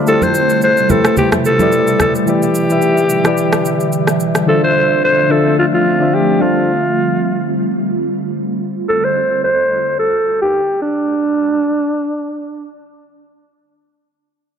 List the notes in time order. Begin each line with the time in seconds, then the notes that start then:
Already playing: G3 A3 D5
0.06 B2 C3 A3 E4 G4 A4 C5 E5, shaker
0.22 C5, high conga, shaker
0.34 shaker
0.50 shaker
0.62 C5, shaker
0.77 shaker
0.88 A3 E4 G4 A4 B4 C5, high conga, low conga, shaker
1.05 cross-stick, shaker
1.17 G4, low conga, shaker
1.32 cross-stick, high conga, shaker
1.45 A4, shaker
1.59 A3 E4 G4 B4 D5, high conga, shaker
1.72 shaker
1.87 shaker
2.00 A4, cross-stick, high conga, low conga, shaker
2.15 shaker
2.26 D3 E3 E4 G4 B4 D5, shaker
2.42 shaker
2.55 shaker
2.69 E3 E4 G4 B4 E5, shaker
2.82 shaker
2.97 shaker
3.10 shaker
3.24 E3 E4 G4 B4 D5, cross-stick, shaker
3.37 shaker
3.53 cross-stick, shaker
3.65 shaker
3.80 shaker
3.92 shaker
4.07 cross-stick, shaker
4.20 shaker
4.35 cross-stick, shaker
4.46 D3 F3 A3 C4 D4 F4 A4 C5 E5
4.64 C5
5.04 C5
5.29 D3 D4 F4 A4 C5 E5
5.59 F4
5.74 F4
5.99 D3 D4 F4 C5 E5
6.14 G4
6.39 G3 D4 F4 A4 C5
8.89 A4
9.04 C5
9.44 C5
9.99 A4
10.42 G4
10.82 D4